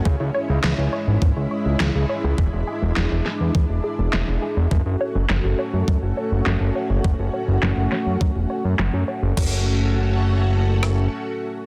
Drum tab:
CC |--------|--------|--------|--------|
SD |--o---o-|--oo--o-|--o---o-|--oo--o-|
BD |o---o---|o---o---|o---o---|o---o---|

CC |x-------|
SD |-----r--|
BD |o-------|